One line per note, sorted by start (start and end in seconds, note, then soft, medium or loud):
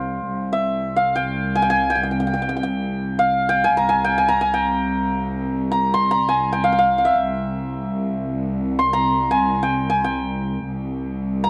0.00 0.26 C2 medium
0.00 1.59 C5 medium
0.00 0.59 F5 medium
0.00 0.79 G5 medium
0.28 3.72 C2 medium
0.53 1.02 E5 medium
0.96 3.18 F5 medium
1.16 1.61 G5 medium
1.55 1.68 G#5 medium
1.62 1.76 G5 medium
1.70 1.96 G#5 medium
1.90 1.95 G5 medium
1.95 2.03 G5 soft
2.03 2.11 G5 soft
2.11 2.19 G5 soft
2.20 2.27 G5 soft
2.27 2.33 G5 soft
2.34 2.42 G5 medium
2.42 2.48 G5 soft
2.49 2.56 G5 medium
2.57 2.63 G5 soft
2.63 3.49 G5 medium
3.19 5.41 F5 medium
3.49 3.70 G5 medium
3.64 3.88 G#5 medium
3.73 7.20 C2 medium
3.73 4.28 A#5 medium
3.89 4.10 G#5 medium
4.04 4.24 G5 medium
4.18 4.41 G#5 medium
4.28 5.71 A#5 medium
4.41 4.60 G#5 medium
4.54 6.35 G5 medium
5.72 6.11 A#5 medium
5.94 7.68 C6 medium
6.11 7.98 A#5 medium
6.29 6.58 G#5 medium
6.53 6.72 G5 medium
6.64 6.78 F5 medium
6.72 8.79 G5 medium
6.79 6.98 F5 medium
6.98 7.11 F5 soft
7.05 9.35 E5 medium
7.21 10.66 C2 medium
8.79 10.53 C6 medium
8.93 10.80 A#5 medium
9.31 9.69 G#5 medium
9.63 9.96 G5 medium
9.90 10.10 G#5 medium
10.04 11.50 G5 medium
10.67 11.50 C2 medium
11.44 11.50 A#5 medium